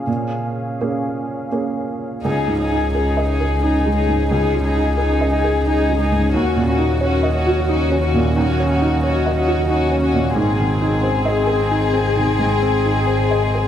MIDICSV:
0, 0, Header, 1, 6, 480
1, 0, Start_track
1, 0, Key_signature, -5, "major"
1, 0, Tempo, 723764
1, 45, Time_signature, 3, 2, 24, 8
1, 1484, Tempo, 691244
1, 2444, Tempo, 677966
1, 5324, Tempo, 668896
1, 7724, Tempo, 684151
1, 9579, End_track
2, 0, Start_track
2, 0, Title_t, "Ambient pad"
2, 0, Program_c, 0, 92
2, 0, Note_on_c, 0, 61, 48
2, 0, Note_on_c, 0, 68, 53
2, 0, Note_on_c, 0, 77, 54
2, 1456, Note_off_c, 0, 68, 0
2, 1472, Note_off_c, 0, 61, 0
2, 1472, Note_on_c, 0, 68, 53
2, 1472, Note_on_c, 0, 75, 51
2, 1480, Note_on_c, 0, 61, 49
2, 1483, Note_off_c, 0, 77, 0
2, 4331, Note_off_c, 0, 68, 0
2, 4331, Note_off_c, 0, 75, 0
2, 4335, Note_off_c, 0, 61, 0
2, 4361, Note_on_c, 0, 61, 52
2, 4364, Note_on_c, 0, 75, 53
2, 4368, Note_on_c, 0, 66, 51
2, 7212, Note_off_c, 0, 61, 0
2, 7213, Note_off_c, 0, 75, 0
2, 7234, Note_on_c, 0, 75, 52
2, 7236, Note_on_c, 0, 68, 54
2, 7238, Note_on_c, 0, 60, 56
2, 7244, Note_off_c, 0, 66, 0
2, 9579, Note_off_c, 0, 60, 0
2, 9579, Note_off_c, 0, 68, 0
2, 9579, Note_off_c, 0, 75, 0
2, 9579, End_track
3, 0, Start_track
3, 0, Title_t, "Violin section"
3, 0, Program_c, 1, 48
3, 1489, Note_on_c, 1, 68, 34
3, 1719, Note_off_c, 1, 68, 0
3, 1727, Note_on_c, 1, 68, 36
3, 1957, Note_off_c, 1, 68, 0
3, 1966, Note_on_c, 1, 68, 30
3, 2197, Note_off_c, 1, 68, 0
3, 2205, Note_on_c, 1, 68, 35
3, 2430, Note_off_c, 1, 68, 0
3, 2438, Note_on_c, 1, 68, 36
3, 2671, Note_off_c, 1, 68, 0
3, 2679, Note_on_c, 1, 68, 34
3, 2917, Note_off_c, 1, 68, 0
3, 2926, Note_on_c, 1, 68, 41
3, 3147, Note_off_c, 1, 68, 0
3, 3155, Note_on_c, 1, 68, 39
3, 3396, Note_off_c, 1, 68, 0
3, 3407, Note_on_c, 1, 68, 33
3, 3643, Note_off_c, 1, 68, 0
3, 3656, Note_on_c, 1, 68, 36
3, 3887, Note_off_c, 1, 68, 0
3, 3897, Note_on_c, 1, 68, 41
3, 4121, Note_off_c, 1, 68, 0
3, 4129, Note_on_c, 1, 68, 38
3, 4363, Note_off_c, 1, 68, 0
3, 4364, Note_on_c, 1, 66, 41
3, 4597, Note_off_c, 1, 66, 0
3, 4606, Note_on_c, 1, 66, 36
3, 4840, Note_off_c, 1, 66, 0
3, 4847, Note_on_c, 1, 66, 43
3, 5075, Note_off_c, 1, 66, 0
3, 5084, Note_on_c, 1, 66, 43
3, 5315, Note_off_c, 1, 66, 0
3, 5323, Note_on_c, 1, 66, 44
3, 5556, Note_off_c, 1, 66, 0
3, 5564, Note_on_c, 1, 66, 37
3, 5800, Note_off_c, 1, 66, 0
3, 5811, Note_on_c, 1, 66, 51
3, 6043, Note_off_c, 1, 66, 0
3, 6054, Note_on_c, 1, 66, 45
3, 6283, Note_off_c, 1, 66, 0
3, 6294, Note_on_c, 1, 66, 43
3, 6522, Note_off_c, 1, 66, 0
3, 6536, Note_on_c, 1, 66, 48
3, 6757, Note_off_c, 1, 66, 0
3, 6766, Note_on_c, 1, 66, 47
3, 6999, Note_off_c, 1, 66, 0
3, 7008, Note_on_c, 1, 66, 41
3, 7241, Note_off_c, 1, 66, 0
3, 7246, Note_on_c, 1, 68, 52
3, 9579, Note_off_c, 1, 68, 0
3, 9579, End_track
4, 0, Start_track
4, 0, Title_t, "Felt piano"
4, 0, Program_c, 2, 0
4, 0, Control_c, 2, 64, 127
4, 46, Note_on_c, 2, 46, 35
4, 57, Control_c, 2, 64, 0
4, 166, Control_c, 2, 64, 127
4, 514, Note_off_c, 2, 46, 0
4, 537, Note_on_c, 2, 58, 24
4, 538, Note_on_c, 2, 61, 23
4, 539, Note_on_c, 2, 68, 28
4, 981, Note_off_c, 2, 58, 0
4, 981, Note_off_c, 2, 61, 0
4, 982, Note_off_c, 2, 68, 0
4, 1008, Note_on_c, 2, 58, 24
4, 1009, Note_on_c, 2, 61, 23
4, 1011, Note_on_c, 2, 68, 24
4, 1459, Note_off_c, 2, 58, 0
4, 1460, Note_off_c, 2, 61, 0
4, 1461, Note_off_c, 2, 68, 0
4, 1488, Note_on_c, 2, 37, 37
4, 1498, Control_c, 2, 64, 0
4, 1613, Control_c, 2, 64, 127
4, 1650, Note_on_c, 2, 44, 31
4, 1820, Note_on_c, 2, 63, 30
4, 1905, Note_off_c, 2, 44, 0
4, 1977, Note_on_c, 2, 68, 33
4, 2068, Note_off_c, 2, 63, 0
4, 2132, Note_on_c, 2, 75, 31
4, 2226, Note_off_c, 2, 68, 0
4, 2295, Note_on_c, 2, 68, 34
4, 2383, Note_off_c, 2, 75, 0
4, 2450, Note_on_c, 2, 63, 33
4, 2546, Note_off_c, 2, 68, 0
4, 2609, Note_on_c, 2, 56, 30
4, 2704, Note_off_c, 2, 63, 0
4, 2772, Note_on_c, 2, 44, 31
4, 2863, Note_off_c, 2, 56, 0
4, 2899, Note_off_c, 2, 37, 0
4, 2931, Note_on_c, 2, 37, 40
4, 2937, Control_c, 2, 64, 0
4, 3023, Note_off_c, 2, 44, 0
4, 3031, Control_c, 2, 64, 127
4, 3092, Note_on_c, 2, 56, 33
4, 3254, Note_on_c, 2, 63, 34
4, 3344, Note_off_c, 2, 56, 0
4, 3403, Note_on_c, 2, 68, 36
4, 3507, Note_off_c, 2, 63, 0
4, 3570, Note_on_c, 2, 75, 34
4, 3662, Note_off_c, 2, 68, 0
4, 3734, Note_on_c, 2, 68, 35
4, 3825, Note_off_c, 2, 75, 0
4, 3888, Note_on_c, 2, 63, 31
4, 3986, Note_off_c, 2, 68, 0
4, 4056, Note_on_c, 2, 56, 35
4, 4143, Note_off_c, 2, 63, 0
4, 4216, Note_on_c, 2, 44, 35
4, 4307, Note_off_c, 2, 56, 0
4, 4340, Note_off_c, 2, 37, 0
4, 4368, Note_on_c, 2, 39, 46
4, 4371, Note_off_c, 2, 44, 0
4, 4378, Control_c, 2, 64, 0
4, 4512, Control_c, 2, 64, 127
4, 4527, Note_on_c, 2, 46, 36
4, 4682, Note_on_c, 2, 63, 38
4, 4781, Note_off_c, 2, 46, 0
4, 4843, Note_on_c, 2, 73, 43
4, 4939, Note_off_c, 2, 63, 0
4, 5000, Note_on_c, 2, 75, 36
4, 5100, Note_off_c, 2, 73, 0
4, 5165, Note_on_c, 2, 66, 45
4, 5259, Note_off_c, 2, 75, 0
4, 5326, Note_on_c, 2, 63, 40
4, 5422, Note_off_c, 2, 66, 0
4, 5486, Note_on_c, 2, 61, 38
4, 5583, Note_off_c, 2, 63, 0
4, 5651, Note_on_c, 2, 46, 41
4, 5742, Note_off_c, 2, 61, 0
4, 5778, Note_off_c, 2, 39, 0
4, 5813, Note_on_c, 2, 39, 53
4, 5819, Control_c, 2, 64, 0
4, 5904, Note_off_c, 2, 46, 0
4, 5942, Control_c, 2, 64, 127
4, 5978, Note_on_c, 2, 61, 42
4, 6134, Note_on_c, 2, 63, 44
4, 6226, Note_off_c, 2, 61, 0
4, 6290, Note_on_c, 2, 73, 44
4, 6384, Note_off_c, 2, 63, 0
4, 6454, Note_on_c, 2, 75, 40
4, 6541, Note_off_c, 2, 73, 0
4, 6609, Note_on_c, 2, 66, 46
4, 6702, Note_off_c, 2, 75, 0
4, 6764, Note_on_c, 2, 63, 41
4, 6861, Note_off_c, 2, 66, 0
4, 6922, Note_on_c, 2, 61, 43
4, 7019, Note_off_c, 2, 63, 0
4, 7083, Note_on_c, 2, 46, 40
4, 7179, Note_off_c, 2, 61, 0
4, 7218, Note_off_c, 2, 39, 0
4, 7241, Note_on_c, 2, 44, 53
4, 7243, Note_off_c, 2, 46, 0
4, 7257, Control_c, 2, 64, 0
4, 7364, Control_c, 2, 64, 127
4, 7409, Note_on_c, 2, 51, 42
4, 7569, Note_on_c, 2, 63, 37
4, 7663, Note_off_c, 2, 51, 0
4, 7722, Note_on_c, 2, 72, 43
4, 7822, Note_off_c, 2, 63, 0
4, 7880, Note_on_c, 2, 75, 39
4, 7977, Note_off_c, 2, 72, 0
4, 8029, Note_on_c, 2, 68, 40
4, 8136, Note_off_c, 2, 75, 0
4, 8199, Note_on_c, 2, 63, 44
4, 8291, Note_off_c, 2, 68, 0
4, 8355, Note_on_c, 2, 60, 41
4, 8456, Note_off_c, 2, 63, 0
4, 8522, Note_on_c, 2, 51, 39
4, 8613, Note_off_c, 2, 60, 0
4, 8651, Note_off_c, 2, 44, 0
4, 8680, Note_on_c, 2, 44, 50
4, 8693, Control_c, 2, 64, 0
4, 8776, Note_off_c, 2, 51, 0
4, 8797, Control_c, 2, 64, 127
4, 8839, Note_on_c, 2, 60, 40
4, 9003, Note_on_c, 2, 63, 36
4, 9096, Note_off_c, 2, 60, 0
4, 9151, Note_on_c, 2, 72, 38
4, 9259, Note_off_c, 2, 63, 0
4, 9321, Note_on_c, 2, 75, 35
4, 9414, Note_off_c, 2, 72, 0
4, 9489, Note_on_c, 2, 68, 39
4, 9579, Note_off_c, 2, 44, 0
4, 9579, Note_off_c, 2, 68, 0
4, 9579, Note_off_c, 2, 75, 0
4, 9579, End_track
5, 0, Start_track
5, 0, Title_t, "Viola"
5, 0, Program_c, 3, 41
5, 1479, Note_on_c, 3, 63, 35
5, 1720, Note_off_c, 3, 63, 0
5, 1729, Note_on_c, 3, 63, 30
5, 1960, Note_off_c, 3, 63, 0
5, 1964, Note_on_c, 3, 63, 37
5, 2195, Note_off_c, 3, 63, 0
5, 2199, Note_on_c, 3, 63, 34
5, 2436, Note_off_c, 3, 63, 0
5, 2446, Note_on_c, 3, 63, 38
5, 2682, Note_off_c, 3, 63, 0
5, 2686, Note_on_c, 3, 63, 32
5, 2917, Note_off_c, 3, 63, 0
5, 2922, Note_on_c, 3, 63, 40
5, 3158, Note_off_c, 3, 63, 0
5, 3162, Note_on_c, 3, 63, 33
5, 3392, Note_off_c, 3, 63, 0
5, 3396, Note_on_c, 3, 63, 43
5, 3632, Note_off_c, 3, 63, 0
5, 3636, Note_on_c, 3, 63, 37
5, 3873, Note_off_c, 3, 63, 0
5, 3877, Note_on_c, 3, 63, 43
5, 4116, Note_off_c, 3, 63, 0
5, 4127, Note_on_c, 3, 63, 36
5, 4357, Note_off_c, 3, 63, 0
5, 4361, Note_on_c, 3, 61, 42
5, 4598, Note_off_c, 3, 61, 0
5, 4604, Note_on_c, 3, 61, 38
5, 4836, Note_off_c, 3, 61, 0
5, 4840, Note_on_c, 3, 61, 45
5, 5073, Note_off_c, 3, 61, 0
5, 5077, Note_on_c, 3, 61, 42
5, 5316, Note_off_c, 3, 61, 0
5, 5321, Note_on_c, 3, 61, 47
5, 5557, Note_off_c, 3, 61, 0
5, 5562, Note_on_c, 3, 61, 43
5, 5795, Note_off_c, 3, 61, 0
5, 5799, Note_on_c, 3, 61, 50
5, 6036, Note_off_c, 3, 61, 0
5, 6043, Note_on_c, 3, 61, 41
5, 6278, Note_off_c, 3, 61, 0
5, 6287, Note_on_c, 3, 61, 49
5, 6512, Note_off_c, 3, 61, 0
5, 6516, Note_on_c, 3, 61, 48
5, 6753, Note_off_c, 3, 61, 0
5, 6762, Note_on_c, 3, 61, 47
5, 6997, Note_off_c, 3, 61, 0
5, 7002, Note_on_c, 3, 61, 42
5, 7238, Note_off_c, 3, 61, 0
5, 7242, Note_on_c, 3, 60, 52
5, 9579, Note_off_c, 3, 60, 0
5, 9579, End_track
6, 0, Start_track
6, 0, Title_t, "Double bass"
6, 0, Program_c, 4, 43
6, 1478, Note_on_c, 4, 37, 38
6, 4370, Note_on_c, 4, 39, 47
6, 4381, Note_off_c, 4, 37, 0
6, 7246, Note_on_c, 4, 32, 51
6, 7257, Note_off_c, 4, 39, 0
6, 9579, Note_off_c, 4, 32, 0
6, 9579, End_track
0, 0, End_of_file